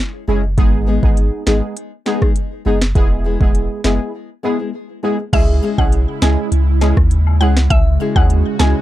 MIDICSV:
0, 0, Header, 1, 8, 480
1, 0, Start_track
1, 0, Key_signature, 4, "minor"
1, 0, Tempo, 594059
1, 467, Time_signature, 4, 2, 24, 8
1, 7123, End_track
2, 0, Start_track
2, 0, Title_t, "Synth pluck"
2, 0, Program_c, 0, 84
2, 4309, Note_on_c, 0, 76, 100
2, 4494, Note_off_c, 0, 76, 0
2, 4674, Note_on_c, 0, 78, 71
2, 4761, Note_off_c, 0, 78, 0
2, 5028, Note_on_c, 0, 80, 80
2, 5126, Note_off_c, 0, 80, 0
2, 5985, Note_on_c, 0, 78, 85
2, 6084, Note_off_c, 0, 78, 0
2, 6224, Note_on_c, 0, 76, 102
2, 6411, Note_off_c, 0, 76, 0
2, 6592, Note_on_c, 0, 78, 77
2, 6680, Note_off_c, 0, 78, 0
2, 6943, Note_on_c, 0, 80, 79
2, 7043, Note_off_c, 0, 80, 0
2, 7123, End_track
3, 0, Start_track
3, 0, Title_t, "Nylon-string guitar"
3, 0, Program_c, 1, 24
3, 222, Note_on_c, 1, 56, 98
3, 228, Note_on_c, 1, 61, 91
3, 233, Note_on_c, 1, 64, 94
3, 237, Note_on_c, 1, 68, 102
3, 336, Note_off_c, 1, 56, 0
3, 340, Note_off_c, 1, 61, 0
3, 341, Note_off_c, 1, 68, 0
3, 342, Note_off_c, 1, 64, 0
3, 701, Note_on_c, 1, 56, 82
3, 707, Note_on_c, 1, 59, 95
3, 712, Note_on_c, 1, 63, 95
3, 717, Note_on_c, 1, 68, 94
3, 816, Note_off_c, 1, 56, 0
3, 819, Note_off_c, 1, 59, 0
3, 821, Note_off_c, 1, 63, 0
3, 824, Note_off_c, 1, 68, 0
3, 1181, Note_on_c, 1, 56, 88
3, 1187, Note_on_c, 1, 59, 91
3, 1192, Note_on_c, 1, 63, 90
3, 1197, Note_on_c, 1, 68, 94
3, 1296, Note_off_c, 1, 56, 0
3, 1299, Note_off_c, 1, 59, 0
3, 1301, Note_off_c, 1, 63, 0
3, 1304, Note_off_c, 1, 68, 0
3, 1661, Note_on_c, 1, 56, 92
3, 1668, Note_on_c, 1, 59, 96
3, 1672, Note_on_c, 1, 63, 93
3, 1677, Note_on_c, 1, 68, 109
3, 1776, Note_off_c, 1, 56, 0
3, 1777, Note_off_c, 1, 68, 0
3, 1779, Note_off_c, 1, 59, 0
3, 1782, Note_off_c, 1, 63, 0
3, 1787, Note_on_c, 1, 68, 63
3, 1794, Note_on_c, 1, 63, 58
3, 1798, Note_on_c, 1, 59, 53
3, 1803, Note_on_c, 1, 56, 57
3, 1868, Note_off_c, 1, 68, 0
3, 1872, Note_off_c, 1, 63, 0
3, 1874, Note_off_c, 1, 59, 0
3, 1876, Note_off_c, 1, 56, 0
3, 2140, Note_on_c, 1, 56, 80
3, 2146, Note_on_c, 1, 59, 98
3, 2151, Note_on_c, 1, 63, 92
3, 2156, Note_on_c, 1, 68, 90
3, 2256, Note_off_c, 1, 56, 0
3, 2258, Note_off_c, 1, 59, 0
3, 2259, Note_off_c, 1, 68, 0
3, 2261, Note_off_c, 1, 63, 0
3, 2621, Note_on_c, 1, 56, 80
3, 2627, Note_on_c, 1, 59, 91
3, 2632, Note_on_c, 1, 64, 88
3, 2636, Note_on_c, 1, 68, 99
3, 2736, Note_off_c, 1, 56, 0
3, 2739, Note_off_c, 1, 59, 0
3, 2741, Note_off_c, 1, 64, 0
3, 2743, Note_off_c, 1, 68, 0
3, 3102, Note_on_c, 1, 56, 84
3, 3108, Note_on_c, 1, 59, 93
3, 3113, Note_on_c, 1, 64, 85
3, 3117, Note_on_c, 1, 68, 90
3, 3216, Note_off_c, 1, 56, 0
3, 3219, Note_off_c, 1, 59, 0
3, 3222, Note_off_c, 1, 64, 0
3, 3224, Note_off_c, 1, 68, 0
3, 3581, Note_on_c, 1, 56, 88
3, 3586, Note_on_c, 1, 59, 86
3, 3592, Note_on_c, 1, 64, 93
3, 3596, Note_on_c, 1, 68, 97
3, 3696, Note_off_c, 1, 56, 0
3, 3699, Note_off_c, 1, 59, 0
3, 3699, Note_off_c, 1, 68, 0
3, 3701, Note_off_c, 1, 64, 0
3, 3708, Note_on_c, 1, 68, 69
3, 3714, Note_on_c, 1, 64, 61
3, 3719, Note_on_c, 1, 59, 56
3, 3724, Note_on_c, 1, 56, 53
3, 3789, Note_off_c, 1, 68, 0
3, 3792, Note_off_c, 1, 64, 0
3, 3794, Note_off_c, 1, 59, 0
3, 3797, Note_off_c, 1, 56, 0
3, 4062, Note_on_c, 1, 56, 75
3, 4068, Note_on_c, 1, 59, 78
3, 4073, Note_on_c, 1, 64, 92
3, 4078, Note_on_c, 1, 68, 97
3, 4177, Note_off_c, 1, 56, 0
3, 4180, Note_off_c, 1, 59, 0
3, 4182, Note_off_c, 1, 64, 0
3, 4182, Note_off_c, 1, 68, 0
3, 4541, Note_on_c, 1, 56, 87
3, 4547, Note_on_c, 1, 61, 89
3, 4553, Note_on_c, 1, 64, 93
3, 4557, Note_on_c, 1, 68, 100
3, 4656, Note_off_c, 1, 56, 0
3, 4659, Note_off_c, 1, 61, 0
3, 4662, Note_off_c, 1, 64, 0
3, 4664, Note_off_c, 1, 68, 0
3, 5024, Note_on_c, 1, 56, 78
3, 5030, Note_on_c, 1, 61, 81
3, 5035, Note_on_c, 1, 64, 91
3, 5039, Note_on_c, 1, 68, 95
3, 5137, Note_off_c, 1, 56, 0
3, 5140, Note_off_c, 1, 61, 0
3, 5143, Note_off_c, 1, 64, 0
3, 5145, Note_off_c, 1, 68, 0
3, 5503, Note_on_c, 1, 56, 94
3, 5508, Note_on_c, 1, 61, 98
3, 5513, Note_on_c, 1, 64, 105
3, 5518, Note_on_c, 1, 68, 108
3, 5617, Note_off_c, 1, 56, 0
3, 5620, Note_off_c, 1, 61, 0
3, 5622, Note_off_c, 1, 64, 0
3, 5624, Note_off_c, 1, 68, 0
3, 5983, Note_on_c, 1, 56, 89
3, 5989, Note_on_c, 1, 61, 90
3, 5994, Note_on_c, 1, 64, 83
3, 5999, Note_on_c, 1, 68, 96
3, 6097, Note_off_c, 1, 56, 0
3, 6100, Note_off_c, 1, 61, 0
3, 6103, Note_off_c, 1, 64, 0
3, 6105, Note_off_c, 1, 68, 0
3, 6462, Note_on_c, 1, 56, 88
3, 6469, Note_on_c, 1, 61, 87
3, 6473, Note_on_c, 1, 64, 92
3, 6478, Note_on_c, 1, 68, 99
3, 6577, Note_off_c, 1, 56, 0
3, 6580, Note_off_c, 1, 61, 0
3, 6582, Note_off_c, 1, 64, 0
3, 6584, Note_off_c, 1, 68, 0
3, 6942, Note_on_c, 1, 56, 89
3, 6948, Note_on_c, 1, 61, 99
3, 6953, Note_on_c, 1, 64, 105
3, 6958, Note_on_c, 1, 68, 107
3, 7057, Note_off_c, 1, 56, 0
3, 7059, Note_off_c, 1, 61, 0
3, 7062, Note_off_c, 1, 64, 0
3, 7065, Note_off_c, 1, 68, 0
3, 7123, End_track
4, 0, Start_track
4, 0, Title_t, "Synth stab"
4, 0, Program_c, 2, 62
4, 226, Note_on_c, 2, 56, 74
4, 228, Note_on_c, 2, 61, 74
4, 230, Note_on_c, 2, 64, 72
4, 232, Note_on_c, 2, 68, 88
4, 337, Note_off_c, 2, 56, 0
4, 338, Note_off_c, 2, 61, 0
4, 338, Note_off_c, 2, 64, 0
4, 339, Note_off_c, 2, 68, 0
4, 465, Note_on_c, 2, 56, 93
4, 466, Note_on_c, 2, 59, 89
4, 468, Note_on_c, 2, 63, 86
4, 470, Note_on_c, 2, 68, 106
4, 803, Note_off_c, 2, 56, 0
4, 803, Note_off_c, 2, 59, 0
4, 804, Note_off_c, 2, 63, 0
4, 805, Note_off_c, 2, 68, 0
4, 833, Note_on_c, 2, 56, 79
4, 834, Note_on_c, 2, 59, 69
4, 836, Note_on_c, 2, 63, 68
4, 838, Note_on_c, 2, 68, 82
4, 1159, Note_off_c, 2, 56, 0
4, 1160, Note_off_c, 2, 59, 0
4, 1161, Note_off_c, 2, 63, 0
4, 1162, Note_off_c, 2, 68, 0
4, 1186, Note_on_c, 2, 56, 79
4, 1189, Note_on_c, 2, 59, 72
4, 1190, Note_on_c, 2, 63, 72
4, 1192, Note_on_c, 2, 68, 84
4, 1409, Note_off_c, 2, 56, 0
4, 1410, Note_off_c, 2, 59, 0
4, 1410, Note_off_c, 2, 63, 0
4, 1411, Note_off_c, 2, 68, 0
4, 1667, Note_on_c, 2, 56, 79
4, 1669, Note_on_c, 2, 59, 69
4, 1669, Note_on_c, 2, 63, 70
4, 1672, Note_on_c, 2, 68, 87
4, 1777, Note_off_c, 2, 56, 0
4, 1778, Note_off_c, 2, 59, 0
4, 1778, Note_off_c, 2, 63, 0
4, 1779, Note_off_c, 2, 68, 0
4, 2146, Note_on_c, 2, 56, 76
4, 2148, Note_on_c, 2, 59, 71
4, 2150, Note_on_c, 2, 63, 70
4, 2151, Note_on_c, 2, 68, 86
4, 2257, Note_off_c, 2, 56, 0
4, 2258, Note_off_c, 2, 59, 0
4, 2259, Note_off_c, 2, 63, 0
4, 2259, Note_off_c, 2, 68, 0
4, 2385, Note_on_c, 2, 56, 90
4, 2387, Note_on_c, 2, 59, 85
4, 2388, Note_on_c, 2, 64, 88
4, 2389, Note_on_c, 2, 68, 109
4, 2723, Note_off_c, 2, 56, 0
4, 2723, Note_off_c, 2, 59, 0
4, 2724, Note_off_c, 2, 64, 0
4, 2725, Note_off_c, 2, 68, 0
4, 2753, Note_on_c, 2, 56, 77
4, 2754, Note_on_c, 2, 59, 71
4, 2756, Note_on_c, 2, 64, 68
4, 2758, Note_on_c, 2, 68, 85
4, 3079, Note_off_c, 2, 56, 0
4, 3080, Note_off_c, 2, 59, 0
4, 3081, Note_off_c, 2, 64, 0
4, 3082, Note_off_c, 2, 68, 0
4, 3106, Note_on_c, 2, 56, 73
4, 3107, Note_on_c, 2, 59, 74
4, 3109, Note_on_c, 2, 64, 71
4, 3111, Note_on_c, 2, 68, 85
4, 3328, Note_off_c, 2, 56, 0
4, 3329, Note_off_c, 2, 59, 0
4, 3330, Note_off_c, 2, 64, 0
4, 3331, Note_off_c, 2, 68, 0
4, 3587, Note_on_c, 2, 56, 75
4, 3588, Note_on_c, 2, 59, 74
4, 3590, Note_on_c, 2, 64, 73
4, 3592, Note_on_c, 2, 68, 85
4, 3697, Note_off_c, 2, 56, 0
4, 3697, Note_off_c, 2, 59, 0
4, 3699, Note_off_c, 2, 64, 0
4, 3699, Note_off_c, 2, 68, 0
4, 4065, Note_on_c, 2, 56, 75
4, 4067, Note_on_c, 2, 59, 71
4, 4069, Note_on_c, 2, 64, 70
4, 4069, Note_on_c, 2, 68, 89
4, 4176, Note_off_c, 2, 56, 0
4, 4177, Note_off_c, 2, 59, 0
4, 4178, Note_off_c, 2, 64, 0
4, 4178, Note_off_c, 2, 68, 0
4, 4305, Note_on_c, 2, 56, 99
4, 4307, Note_on_c, 2, 61, 87
4, 4308, Note_on_c, 2, 64, 88
4, 4310, Note_on_c, 2, 68, 107
4, 4643, Note_off_c, 2, 56, 0
4, 4643, Note_off_c, 2, 61, 0
4, 4644, Note_off_c, 2, 64, 0
4, 4645, Note_off_c, 2, 68, 0
4, 4672, Note_on_c, 2, 56, 75
4, 4673, Note_on_c, 2, 61, 70
4, 4675, Note_on_c, 2, 64, 70
4, 4677, Note_on_c, 2, 68, 85
4, 4999, Note_off_c, 2, 56, 0
4, 5000, Note_off_c, 2, 61, 0
4, 5000, Note_off_c, 2, 64, 0
4, 5001, Note_off_c, 2, 68, 0
4, 5023, Note_on_c, 2, 56, 81
4, 5024, Note_on_c, 2, 61, 74
4, 5026, Note_on_c, 2, 64, 69
4, 5027, Note_on_c, 2, 68, 85
4, 5247, Note_off_c, 2, 56, 0
4, 5248, Note_off_c, 2, 61, 0
4, 5248, Note_off_c, 2, 64, 0
4, 5249, Note_off_c, 2, 68, 0
4, 5502, Note_on_c, 2, 56, 80
4, 5504, Note_on_c, 2, 61, 74
4, 5506, Note_on_c, 2, 64, 75
4, 5507, Note_on_c, 2, 68, 88
4, 5615, Note_off_c, 2, 56, 0
4, 5616, Note_off_c, 2, 61, 0
4, 5616, Note_off_c, 2, 64, 0
4, 5617, Note_off_c, 2, 68, 0
4, 5984, Note_on_c, 2, 56, 81
4, 5985, Note_on_c, 2, 61, 71
4, 5987, Note_on_c, 2, 64, 71
4, 5988, Note_on_c, 2, 68, 89
4, 6095, Note_off_c, 2, 56, 0
4, 6096, Note_off_c, 2, 61, 0
4, 6097, Note_off_c, 2, 64, 0
4, 6098, Note_off_c, 2, 68, 0
4, 6591, Note_on_c, 2, 56, 80
4, 6593, Note_on_c, 2, 61, 69
4, 6594, Note_on_c, 2, 64, 73
4, 6596, Note_on_c, 2, 68, 85
4, 6918, Note_off_c, 2, 56, 0
4, 6919, Note_off_c, 2, 61, 0
4, 6920, Note_off_c, 2, 64, 0
4, 6921, Note_off_c, 2, 68, 0
4, 6943, Note_on_c, 2, 56, 80
4, 6945, Note_on_c, 2, 61, 73
4, 6947, Note_on_c, 2, 64, 73
4, 6948, Note_on_c, 2, 68, 85
4, 7123, Note_off_c, 2, 56, 0
4, 7123, Note_off_c, 2, 61, 0
4, 7123, Note_off_c, 2, 64, 0
4, 7123, Note_off_c, 2, 68, 0
4, 7123, End_track
5, 0, Start_track
5, 0, Title_t, "Analog synth pad"
5, 0, Program_c, 3, 89
5, 4308, Note_on_c, 3, 49, 82
5, 4308, Note_on_c, 3, 56, 72
5, 4308, Note_on_c, 3, 64, 92
5, 6208, Note_off_c, 3, 64, 0
5, 6226, Note_on_c, 3, 66, 89
5, 7123, Note_off_c, 3, 49, 0
5, 7123, Note_off_c, 3, 56, 0
5, 7123, Note_off_c, 3, 66, 0
5, 7123, End_track
6, 0, Start_track
6, 0, Title_t, "Sub bass"
6, 0, Program_c, 4, 38
6, 227, Note_on_c, 4, 30, 89
6, 466, Note_on_c, 4, 32, 100
6, 478, Note_off_c, 4, 30, 0
6, 802, Note_off_c, 4, 32, 0
6, 831, Note_on_c, 4, 32, 87
6, 1052, Note_off_c, 4, 32, 0
6, 1188, Note_on_c, 4, 32, 100
6, 1304, Note_off_c, 4, 32, 0
6, 2148, Note_on_c, 4, 30, 95
6, 2367, Note_off_c, 4, 30, 0
6, 2387, Note_on_c, 4, 28, 100
6, 2723, Note_off_c, 4, 28, 0
6, 2752, Note_on_c, 4, 28, 98
6, 2972, Note_off_c, 4, 28, 0
6, 3108, Note_on_c, 4, 30, 93
6, 3224, Note_off_c, 4, 30, 0
6, 4306, Note_on_c, 4, 37, 108
6, 4526, Note_off_c, 4, 37, 0
6, 4672, Note_on_c, 4, 35, 95
6, 4893, Note_off_c, 4, 35, 0
6, 5026, Note_on_c, 4, 37, 103
6, 5143, Note_off_c, 4, 37, 0
6, 5266, Note_on_c, 4, 37, 102
6, 5603, Note_off_c, 4, 37, 0
6, 5632, Note_on_c, 4, 39, 94
6, 5985, Note_on_c, 4, 37, 99
6, 5997, Note_off_c, 4, 39, 0
6, 6205, Note_off_c, 4, 37, 0
6, 6226, Note_on_c, 4, 37, 97
6, 6446, Note_off_c, 4, 37, 0
6, 6592, Note_on_c, 4, 39, 92
6, 6813, Note_off_c, 4, 39, 0
6, 6946, Note_on_c, 4, 37, 104
6, 7063, Note_off_c, 4, 37, 0
6, 7123, End_track
7, 0, Start_track
7, 0, Title_t, "Muted nylon-string guitar strokes"
7, 351, Note_on_c, 9, 29, 49
7, 432, Note_off_c, 9, 29, 0
7, 4192, Note_on_c, 9, 29, 55
7, 4273, Note_off_c, 9, 29, 0
7, 7123, End_track
8, 0, Start_track
8, 0, Title_t, "Drums"
8, 466, Note_on_c, 9, 36, 119
8, 466, Note_on_c, 9, 42, 72
8, 547, Note_off_c, 9, 36, 0
8, 547, Note_off_c, 9, 42, 0
8, 832, Note_on_c, 9, 36, 96
8, 913, Note_off_c, 9, 36, 0
8, 946, Note_on_c, 9, 42, 69
8, 1027, Note_off_c, 9, 42, 0
8, 1185, Note_on_c, 9, 38, 105
8, 1266, Note_off_c, 9, 38, 0
8, 1427, Note_on_c, 9, 42, 85
8, 1507, Note_off_c, 9, 42, 0
8, 1666, Note_on_c, 9, 38, 67
8, 1747, Note_off_c, 9, 38, 0
8, 1793, Note_on_c, 9, 36, 95
8, 1794, Note_on_c, 9, 37, 90
8, 1873, Note_off_c, 9, 36, 0
8, 1875, Note_off_c, 9, 37, 0
8, 1904, Note_on_c, 9, 42, 85
8, 1985, Note_off_c, 9, 42, 0
8, 2275, Note_on_c, 9, 38, 116
8, 2355, Note_off_c, 9, 38, 0
8, 2386, Note_on_c, 9, 36, 113
8, 2387, Note_on_c, 9, 42, 72
8, 2467, Note_off_c, 9, 36, 0
8, 2468, Note_off_c, 9, 42, 0
8, 2752, Note_on_c, 9, 36, 94
8, 2833, Note_off_c, 9, 36, 0
8, 2866, Note_on_c, 9, 42, 68
8, 2947, Note_off_c, 9, 42, 0
8, 3105, Note_on_c, 9, 38, 108
8, 3186, Note_off_c, 9, 38, 0
8, 4306, Note_on_c, 9, 36, 121
8, 4306, Note_on_c, 9, 76, 80
8, 4307, Note_on_c, 9, 42, 74
8, 4307, Note_on_c, 9, 49, 96
8, 4387, Note_off_c, 9, 36, 0
8, 4387, Note_off_c, 9, 76, 0
8, 4388, Note_off_c, 9, 42, 0
8, 4388, Note_off_c, 9, 49, 0
8, 4546, Note_on_c, 9, 69, 78
8, 4626, Note_off_c, 9, 69, 0
8, 4672, Note_on_c, 9, 36, 96
8, 4674, Note_on_c, 9, 76, 78
8, 4753, Note_off_c, 9, 36, 0
8, 4754, Note_off_c, 9, 76, 0
8, 4786, Note_on_c, 9, 42, 72
8, 4867, Note_off_c, 9, 42, 0
8, 5024, Note_on_c, 9, 69, 75
8, 5024, Note_on_c, 9, 76, 77
8, 5026, Note_on_c, 9, 38, 113
8, 5105, Note_off_c, 9, 69, 0
8, 5105, Note_off_c, 9, 76, 0
8, 5107, Note_off_c, 9, 38, 0
8, 5267, Note_on_c, 9, 42, 89
8, 5348, Note_off_c, 9, 42, 0
8, 5504, Note_on_c, 9, 69, 83
8, 5504, Note_on_c, 9, 76, 84
8, 5505, Note_on_c, 9, 38, 69
8, 5585, Note_off_c, 9, 69, 0
8, 5585, Note_off_c, 9, 76, 0
8, 5586, Note_off_c, 9, 38, 0
8, 5632, Note_on_c, 9, 36, 99
8, 5633, Note_on_c, 9, 37, 93
8, 5713, Note_off_c, 9, 36, 0
8, 5714, Note_off_c, 9, 37, 0
8, 5744, Note_on_c, 9, 42, 89
8, 5825, Note_off_c, 9, 42, 0
8, 5873, Note_on_c, 9, 76, 74
8, 5954, Note_off_c, 9, 76, 0
8, 5984, Note_on_c, 9, 69, 70
8, 6065, Note_off_c, 9, 69, 0
8, 6113, Note_on_c, 9, 38, 127
8, 6194, Note_off_c, 9, 38, 0
8, 6226, Note_on_c, 9, 36, 124
8, 6226, Note_on_c, 9, 42, 75
8, 6226, Note_on_c, 9, 76, 82
8, 6306, Note_off_c, 9, 76, 0
8, 6307, Note_off_c, 9, 36, 0
8, 6307, Note_off_c, 9, 42, 0
8, 6465, Note_on_c, 9, 69, 81
8, 6546, Note_off_c, 9, 69, 0
8, 6592, Note_on_c, 9, 36, 99
8, 6594, Note_on_c, 9, 76, 77
8, 6672, Note_off_c, 9, 36, 0
8, 6674, Note_off_c, 9, 76, 0
8, 6706, Note_on_c, 9, 42, 74
8, 6787, Note_off_c, 9, 42, 0
8, 6946, Note_on_c, 9, 38, 113
8, 6946, Note_on_c, 9, 69, 76
8, 6946, Note_on_c, 9, 76, 74
8, 7027, Note_off_c, 9, 38, 0
8, 7027, Note_off_c, 9, 69, 0
8, 7027, Note_off_c, 9, 76, 0
8, 7123, End_track
0, 0, End_of_file